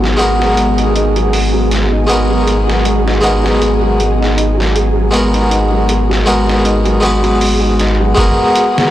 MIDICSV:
0, 0, Header, 1, 7, 480
1, 0, Start_track
1, 0, Key_signature, 5, "minor"
1, 0, Tempo, 759494
1, 1323, Time_signature, 4, 2, 24, 8
1, 5628, End_track
2, 0, Start_track
2, 0, Title_t, "String machine"
2, 0, Program_c, 0, 50
2, 0, Note_on_c, 0, 59, 60
2, 0, Note_on_c, 0, 68, 75
2, 0, Note_on_c, 0, 78, 65
2, 0, Note_on_c, 0, 82, 76
2, 5138, Note_off_c, 0, 59, 0
2, 5139, Note_off_c, 0, 68, 0
2, 5139, Note_off_c, 0, 78, 0
2, 5139, Note_off_c, 0, 82, 0
2, 5628, End_track
3, 0, Start_track
3, 0, Title_t, "Synth texture"
3, 0, Program_c, 1, 99
3, 0, Note_on_c, 1, 68, 66
3, 5158, Note_on_c, 1, 66, 80
3, 5172, Note_off_c, 1, 68, 0
3, 5628, Note_off_c, 1, 66, 0
3, 5628, End_track
4, 0, Start_track
4, 0, Title_t, "Harpsichord"
4, 0, Program_c, 2, 6
4, 0, Note_on_c, 2, 56, 64
4, 0, Note_on_c, 2, 59, 60
4, 0, Note_on_c, 2, 66, 59
4, 0, Note_on_c, 2, 70, 74
4, 89, Note_off_c, 2, 56, 0
4, 94, Note_off_c, 2, 59, 0
4, 99, Note_off_c, 2, 66, 0
4, 104, Note_off_c, 2, 70, 0
4, 106, Note_on_c, 2, 56, 77
4, 116, Note_on_c, 2, 59, 73
4, 130, Note_on_c, 2, 66, 74
4, 137, Note_on_c, 2, 70, 87
4, 1288, Note_off_c, 2, 56, 0
4, 1293, Note_off_c, 2, 59, 0
4, 1300, Note_off_c, 2, 66, 0
4, 1304, Note_off_c, 2, 70, 0
4, 1307, Note_on_c, 2, 56, 70
4, 1318, Note_on_c, 2, 59, 64
4, 1329, Note_on_c, 2, 66, 61
4, 1339, Note_on_c, 2, 70, 73
4, 2009, Note_off_c, 2, 56, 0
4, 2014, Note_off_c, 2, 59, 0
4, 2019, Note_off_c, 2, 66, 0
4, 2025, Note_off_c, 2, 70, 0
4, 2028, Note_on_c, 2, 56, 87
4, 2039, Note_on_c, 2, 59, 75
4, 2048, Note_on_c, 2, 66, 77
4, 2059, Note_on_c, 2, 70, 92
4, 3209, Note_off_c, 2, 56, 0
4, 3215, Note_off_c, 2, 59, 0
4, 3219, Note_off_c, 2, 66, 0
4, 3225, Note_off_c, 2, 70, 0
4, 3229, Note_on_c, 2, 56, 71
4, 3238, Note_on_c, 2, 59, 61
4, 3249, Note_on_c, 2, 66, 65
4, 3259, Note_on_c, 2, 70, 76
4, 3930, Note_off_c, 2, 56, 0
4, 3934, Note_off_c, 2, 59, 0
4, 3940, Note_off_c, 2, 66, 0
4, 3945, Note_off_c, 2, 70, 0
4, 3955, Note_on_c, 2, 56, 86
4, 3961, Note_on_c, 2, 59, 82
4, 3965, Note_on_c, 2, 66, 75
4, 3971, Note_on_c, 2, 70, 93
4, 4417, Note_off_c, 2, 56, 0
4, 4420, Note_off_c, 2, 59, 0
4, 4422, Note_off_c, 2, 66, 0
4, 4425, Note_off_c, 2, 70, 0
4, 4426, Note_on_c, 2, 56, 82
4, 4437, Note_on_c, 2, 59, 78
4, 4449, Note_on_c, 2, 66, 78
4, 4457, Note_on_c, 2, 71, 91
4, 5128, Note_off_c, 2, 56, 0
4, 5134, Note_off_c, 2, 59, 0
4, 5140, Note_off_c, 2, 66, 0
4, 5144, Note_off_c, 2, 71, 0
4, 5148, Note_on_c, 2, 56, 72
4, 5159, Note_on_c, 2, 59, 75
4, 5168, Note_on_c, 2, 66, 67
4, 5178, Note_on_c, 2, 70, 86
4, 5628, Note_off_c, 2, 56, 0
4, 5628, Note_off_c, 2, 59, 0
4, 5628, Note_off_c, 2, 66, 0
4, 5628, Note_off_c, 2, 70, 0
4, 5628, End_track
5, 0, Start_track
5, 0, Title_t, "Felt piano"
5, 0, Program_c, 3, 0
5, 0, Control_c, 3, 64, 127
5, 0, Note_on_c, 3, 54, 67
5, 0, Note_on_c, 3, 56, 61
5, 0, Note_on_c, 3, 63, 77
5, 0, Note_on_c, 3, 68, 70
5, 12, Note_off_c, 3, 54, 0
5, 12, Note_on_c, 3, 54, 66
5, 75, Note_off_c, 3, 54, 0
5, 122, Note_off_c, 3, 68, 0
5, 122, Note_on_c, 3, 68, 63
5, 240, Note_off_c, 3, 68, 0
5, 250, Note_on_c, 3, 54, 68
5, 355, Note_off_c, 3, 54, 0
5, 356, Note_off_c, 3, 56, 0
5, 356, Note_on_c, 3, 56, 71
5, 477, Note_off_c, 3, 56, 0
5, 492, Note_off_c, 3, 63, 0
5, 492, Note_on_c, 3, 63, 62
5, 591, Note_off_c, 3, 63, 0
5, 601, Note_on_c, 3, 63, 88
5, 720, Note_off_c, 3, 63, 0
5, 735, Note_on_c, 3, 54, 70
5, 796, Note_off_c, 3, 54, 0
5, 840, Note_on_c, 3, 68, 70
5, 959, Note_off_c, 3, 68, 0
5, 971, Note_on_c, 3, 54, 64
5, 1076, Note_off_c, 3, 54, 0
5, 1080, Note_on_c, 3, 56, 60
5, 1199, Note_off_c, 3, 56, 0
5, 1211, Note_on_c, 3, 63, 68
5, 1311, Note_off_c, 3, 63, 0
5, 1321, Note_on_c, 3, 63, 93
5, 1439, Note_off_c, 3, 63, 0
5, 1451, Note_on_c, 3, 54, 67
5, 1515, Note_off_c, 3, 54, 0
5, 1558, Note_on_c, 3, 68, 64
5, 1678, Note_off_c, 3, 68, 0
5, 1689, Note_on_c, 3, 54, 62
5, 1795, Note_off_c, 3, 54, 0
5, 1799, Note_on_c, 3, 56, 68
5, 1919, Note_off_c, 3, 56, 0
5, 1930, Note_on_c, 3, 63, 69
5, 2029, Note_off_c, 3, 63, 0
5, 2039, Note_on_c, 3, 63, 89
5, 2158, Note_off_c, 3, 63, 0
5, 2172, Note_on_c, 3, 54, 67
5, 2235, Note_off_c, 3, 54, 0
5, 2279, Note_on_c, 3, 68, 78
5, 2399, Note_off_c, 3, 68, 0
5, 2413, Note_on_c, 3, 54, 63
5, 2517, Note_off_c, 3, 54, 0
5, 2527, Note_on_c, 3, 56, 66
5, 2643, Note_off_c, 3, 56, 0
5, 2653, Note_on_c, 3, 63, 67
5, 2748, Note_off_c, 3, 63, 0
5, 2757, Note_on_c, 3, 63, 90
5, 2878, Note_off_c, 3, 63, 0
5, 2891, Note_on_c, 3, 54, 65
5, 2955, Note_off_c, 3, 54, 0
5, 3001, Note_on_c, 3, 68, 61
5, 3120, Note_off_c, 3, 68, 0
5, 3133, Note_on_c, 3, 54, 69
5, 3237, Note_off_c, 3, 54, 0
5, 3242, Note_on_c, 3, 56, 70
5, 3360, Note_off_c, 3, 56, 0
5, 3373, Note_on_c, 3, 63, 70
5, 3467, Note_off_c, 3, 63, 0
5, 3477, Note_on_c, 3, 63, 88
5, 3598, Note_off_c, 3, 63, 0
5, 3613, Note_on_c, 3, 54, 70
5, 3676, Note_off_c, 3, 54, 0
5, 3723, Note_on_c, 3, 68, 69
5, 3840, Note_off_c, 3, 68, 0
5, 3852, Note_on_c, 3, 54, 67
5, 3957, Note_off_c, 3, 54, 0
5, 3959, Note_on_c, 3, 56, 62
5, 4079, Note_off_c, 3, 56, 0
5, 4088, Note_on_c, 3, 63, 64
5, 4189, Note_off_c, 3, 63, 0
5, 4199, Note_on_c, 3, 63, 90
5, 4319, Note_off_c, 3, 63, 0
5, 4333, Note_on_c, 3, 54, 73
5, 4395, Note_off_c, 3, 54, 0
5, 4439, Note_on_c, 3, 68, 66
5, 4558, Note_off_c, 3, 68, 0
5, 4574, Note_on_c, 3, 54, 65
5, 4678, Note_off_c, 3, 54, 0
5, 4685, Note_on_c, 3, 56, 72
5, 4801, Note_off_c, 3, 56, 0
5, 4815, Note_on_c, 3, 63, 65
5, 4912, Note_off_c, 3, 63, 0
5, 4925, Note_on_c, 3, 63, 82
5, 5042, Note_off_c, 3, 63, 0
5, 5057, Note_on_c, 3, 54, 68
5, 5117, Note_off_c, 3, 54, 0
5, 5172, Control_c, 3, 64, 0
5, 5261, Control_c, 3, 64, 127
5, 5628, End_track
6, 0, Start_track
6, 0, Title_t, "Analog synth bass"
6, 0, Program_c, 4, 38
6, 0, Note_on_c, 4, 32, 83
6, 5143, Note_off_c, 4, 32, 0
6, 5167, Note_on_c, 4, 32, 101
6, 5280, Note_off_c, 4, 32, 0
6, 5628, End_track
7, 0, Start_track
7, 0, Title_t, "Drums"
7, 24, Note_on_c, 9, 38, 40
7, 87, Note_off_c, 9, 38, 0
7, 122, Note_on_c, 9, 42, 55
7, 185, Note_off_c, 9, 42, 0
7, 264, Note_on_c, 9, 38, 43
7, 327, Note_off_c, 9, 38, 0
7, 362, Note_on_c, 9, 42, 74
7, 426, Note_off_c, 9, 42, 0
7, 494, Note_on_c, 9, 42, 40
7, 557, Note_off_c, 9, 42, 0
7, 604, Note_on_c, 9, 42, 60
7, 667, Note_off_c, 9, 42, 0
7, 734, Note_on_c, 9, 42, 37
7, 797, Note_off_c, 9, 42, 0
7, 842, Note_on_c, 9, 46, 76
7, 905, Note_off_c, 9, 46, 0
7, 1084, Note_on_c, 9, 42, 61
7, 1094, Note_on_c, 9, 38, 39
7, 1147, Note_off_c, 9, 42, 0
7, 1157, Note_off_c, 9, 38, 0
7, 1325, Note_on_c, 9, 42, 75
7, 1388, Note_off_c, 9, 42, 0
7, 1564, Note_on_c, 9, 42, 60
7, 1627, Note_off_c, 9, 42, 0
7, 1703, Note_on_c, 9, 38, 50
7, 1766, Note_off_c, 9, 38, 0
7, 1803, Note_on_c, 9, 42, 75
7, 1866, Note_off_c, 9, 42, 0
7, 1944, Note_on_c, 9, 38, 43
7, 2007, Note_off_c, 9, 38, 0
7, 2045, Note_on_c, 9, 42, 59
7, 2108, Note_off_c, 9, 42, 0
7, 2185, Note_on_c, 9, 38, 47
7, 2248, Note_off_c, 9, 38, 0
7, 2286, Note_on_c, 9, 42, 70
7, 2349, Note_off_c, 9, 42, 0
7, 2527, Note_on_c, 9, 42, 62
7, 2591, Note_off_c, 9, 42, 0
7, 2670, Note_on_c, 9, 38, 33
7, 2733, Note_off_c, 9, 38, 0
7, 2767, Note_on_c, 9, 42, 84
7, 2831, Note_off_c, 9, 42, 0
7, 2908, Note_on_c, 9, 38, 38
7, 2971, Note_off_c, 9, 38, 0
7, 3006, Note_on_c, 9, 42, 58
7, 3069, Note_off_c, 9, 42, 0
7, 3246, Note_on_c, 9, 42, 79
7, 3309, Note_off_c, 9, 42, 0
7, 3376, Note_on_c, 9, 42, 36
7, 3439, Note_off_c, 9, 42, 0
7, 3485, Note_on_c, 9, 42, 65
7, 3548, Note_off_c, 9, 42, 0
7, 3722, Note_on_c, 9, 42, 77
7, 3785, Note_off_c, 9, 42, 0
7, 3863, Note_on_c, 9, 38, 41
7, 3926, Note_off_c, 9, 38, 0
7, 3964, Note_on_c, 9, 42, 57
7, 4027, Note_off_c, 9, 42, 0
7, 4105, Note_on_c, 9, 38, 46
7, 4168, Note_off_c, 9, 38, 0
7, 4203, Note_on_c, 9, 42, 75
7, 4267, Note_off_c, 9, 42, 0
7, 4333, Note_on_c, 9, 42, 40
7, 4396, Note_off_c, 9, 42, 0
7, 4442, Note_on_c, 9, 42, 62
7, 4505, Note_off_c, 9, 42, 0
7, 4575, Note_on_c, 9, 42, 38
7, 4638, Note_off_c, 9, 42, 0
7, 4684, Note_on_c, 9, 46, 77
7, 4748, Note_off_c, 9, 46, 0
7, 4926, Note_on_c, 9, 42, 57
7, 4936, Note_on_c, 9, 38, 43
7, 4990, Note_off_c, 9, 42, 0
7, 5000, Note_off_c, 9, 38, 0
7, 5164, Note_on_c, 9, 36, 102
7, 5166, Note_on_c, 9, 42, 85
7, 5228, Note_off_c, 9, 36, 0
7, 5230, Note_off_c, 9, 42, 0
7, 5407, Note_on_c, 9, 42, 74
7, 5470, Note_off_c, 9, 42, 0
7, 5549, Note_on_c, 9, 38, 60
7, 5612, Note_off_c, 9, 38, 0
7, 5628, End_track
0, 0, End_of_file